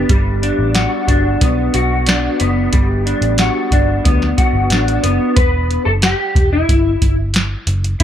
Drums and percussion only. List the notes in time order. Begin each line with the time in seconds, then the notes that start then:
0.09 kick, closed hi-hat
0.43 closed hi-hat
0.75 snare, closed hi-hat
1.08 kick, closed hi-hat
1.41 kick, closed hi-hat
1.74 closed hi-hat
2.07 snare, closed hi-hat
2.40 closed hi-hat
2.73 kick, closed hi-hat
3.07 closed hi-hat
3.22 closed hi-hat
3.38 snare, closed hi-hat
3.72 kick, closed hi-hat
4.05 kick, closed hi-hat
4.22 snare
4.38 kick, closed hi-hat
4.70 snare, closed hi-hat
4.88 closed hi-hat
5.04 closed hi-hat
5.37 kick, closed hi-hat
5.71 closed hi-hat
6.02 snare, closed hi-hat
6.35 kick, closed hi-hat
6.69 kick, closed hi-hat
7.02 kick, closed hi-hat
7.34 snare, closed hi-hat
7.67 closed hi-hat
7.84 closed hi-hat
8.00 closed hi-hat